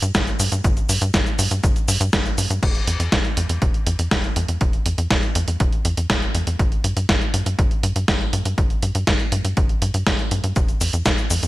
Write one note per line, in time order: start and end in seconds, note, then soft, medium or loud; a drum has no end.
0.02 0.12 G2 medium
0.02 closed hi-hat medium
0.02 cabasa soft
0.15 0.34 G1 loud
0.15 kick loud
0.15 snare loud
0.15 closed hi-hat medium
0.15 cabasa soft
0.27 closed hi-hat soft
0.27 cabasa soft
0.40 0.49 G2 loud
0.40 open hi-hat loud
0.40 cabasa medium
0.52 0.62 G2 medium
0.52 closed hi-hat medium
0.52 cabasa soft
0.64 0.84 G1 loud
0.64 kick loud
0.64 closed hi-hat soft
0.64 cabasa soft
0.77 closed hi-hat soft
0.77 cabasa soft
0.89 0.99 G2 medium
0.89 open hi-hat loud
0.89 cabasa medium
1.01 1.11 G2 medium
1.01 closed hi-hat medium
1.01 cabasa soft
1.14 1.24 G1 medium
1.14 kick loud
1.14 snare loud
1.14 closed hi-hat medium
1.14 cabasa soft
1.26 closed hi-hat soft
1.26 cabasa soft
1.39 1.48 G2 loud
1.39 open hi-hat loud
1.39 cabasa medium
1.51 1.61 G2 medium
1.51 closed hi-hat medium
1.51 cabasa soft
1.64 1.73 G1 loud
1.64 kick loud
1.64 closed hi-hat medium
1.64 cabasa soft
1.76 closed hi-hat soft
1.76 cabasa soft
1.88 1.98 G2 medium
1.88 open hi-hat loud
1.88 cabasa medium
2.00 2.10 G2 loud
2.00 closed hi-hat medium
2.00 cabasa soft
2.13 2.32 G1 medium
2.13 kick loud
2.13 snare loud
2.13 closed hi-hat medium
2.13 cabasa soft
2.26 closed hi-hat soft
2.26 cabasa soft
2.38 2.48 G2 medium
2.38 open hi-hat loud
2.38 cabasa medium
2.50 2.60 G2 medium
2.50 closed hi-hat medium
2.50 cabasa soft
2.63 2.82 F1 loud
2.63 kick loud
2.63 closed hi-hat soft
2.63 crash medium
2.75 closed hi-hat soft
2.87 2.97 F2 medium
2.87 closed hi-hat medium
3.00 3.09 F2 medium
3.00 closed hi-hat medium
3.12 3.22 F1 loud
3.12 kick loud
3.12 snare loud
3.12 closed hi-hat medium
3.25 closed hi-hat soft
3.37 3.47 F2 medium
3.37 closed hi-hat loud
3.49 3.59 F2 medium
3.49 closed hi-hat medium
3.62 3.72 F1 loud
3.62 kick loud
3.62 closed hi-hat medium
3.74 closed hi-hat soft
3.87 3.96 F2 medium
3.87 closed hi-hat medium
3.99 4.09 F2 medium
3.99 closed hi-hat medium
4.11 4.31 F1 loud
4.11 kick loud
4.11 snare loud
4.11 closed hi-hat medium
4.24 closed hi-hat soft
4.36 4.46 F2 loud
4.36 closed hi-hat medium
4.48 4.58 F2 medium
4.48 closed hi-hat medium
4.61 4.80 F1 loud
4.61 kick loud
4.61 closed hi-hat soft
4.73 closed hi-hat soft
4.86 4.96 F2 medium
4.86 closed hi-hat medium
4.98 5.08 F2 medium
4.98 closed hi-hat medium
5.11 5.20 F1 loud
5.11 kick loud
5.11 snare loud
5.11 closed hi-hat medium
5.23 closed hi-hat soft
5.35 5.45 F2 loud
5.35 closed hi-hat loud
5.48 5.57 F2 medium
5.48 closed hi-hat soft
5.60 5.70 F1 loud
5.60 kick loud
5.60 closed hi-hat medium
5.73 closed hi-hat soft
5.85 5.95 F2 medium
5.85 closed hi-hat medium
5.97 6.07 F2 medium
5.97 closed hi-hat medium
6.10 6.29 F1 medium
6.10 kick loud
6.10 snare loud
6.10 closed hi-hat medium
6.22 closed hi-hat soft
6.35 6.44 F2 medium
6.35 closed hi-hat medium
6.47 6.57 F2 medium
6.47 closed hi-hat medium
6.59 6.79 G1 loud
6.59 kick loud
6.59 closed hi-hat soft
6.72 closed hi-hat soft
6.84 6.94 G2 medium
6.84 closed hi-hat medium
6.97 7.06 G2 medium
6.97 closed hi-hat medium
7.09 7.19 G1 loud
7.09 kick loud
7.09 snare loud
7.09 closed hi-hat medium
7.22 closed hi-hat soft
7.34 7.43 G2 medium
7.34 closed hi-hat medium
7.46 7.56 G2 medium
7.46 closed hi-hat soft
7.59 7.68 G1 loud
7.59 kick loud
7.59 closed hi-hat medium
7.71 closed hi-hat soft
7.83 7.93 G2 medium
7.83 closed hi-hat medium
7.96 8.05 G2 medium
7.96 closed hi-hat soft
8.08 8.28 G1 loud
8.08 kick loud
8.08 snare loud
8.08 closed hi-hat medium
8.21 closed hi-hat soft
8.33 8.43 G2 medium
8.33 closed hi-hat medium
8.45 8.55 G2 medium
8.45 closed hi-hat medium
8.58 8.77 G1 loud
8.58 kick loud
8.58 closed hi-hat soft
8.70 closed hi-hat soft
8.82 8.92 G2 medium
8.82 closed hi-hat medium
8.95 9.05 G2 medium
8.95 closed hi-hat medium
9.07 9.17 G1 loud
9.07 kick loud
9.07 snare loud
9.07 closed hi-hat soft
9.20 closed hi-hat soft
9.32 9.42 G2 medium
9.32 closed hi-hat medium
9.45 9.54 G2 medium
9.45 closed hi-hat soft
9.57 9.76 G1 medium
9.57 kick loud
9.57 closed hi-hat medium
9.69 closed hi-hat soft
9.82 9.91 G2 medium
9.82 closed hi-hat medium
9.94 10.04 G2 medium
9.94 closed hi-hat medium
10.07 10.16 G1 medium
10.07 kick loud
10.07 snare loud
10.07 closed hi-hat medium
10.19 closed hi-hat soft
10.31 10.41 G2 medium
10.31 closed hi-hat medium
10.44 10.53 G2 medium
10.44 closed hi-hat soft
10.56 10.76 F1 loud
10.56 kick loud
10.56 closed hi-hat soft
10.56 cabasa soft
10.68 closed hi-hat soft
10.68 cabasa soft
10.81 10.91 F2 medium
10.81 open hi-hat loud
10.81 cabasa medium
10.93 11.03 F2 medium
10.93 closed hi-hat soft
10.93 cabasa soft
11.06 11.15 F1 medium
11.06 kick loud
11.06 snare loud
11.06 closed hi-hat soft
11.06 cabasa soft
11.18 closed hi-hat soft
11.18 cabasa soft
11.30 11.40 F2 medium
11.30 open hi-hat medium
11.30 cabasa medium
11.43 11.48 F2 medium
11.43 closed hi-hat soft
11.43 cabasa soft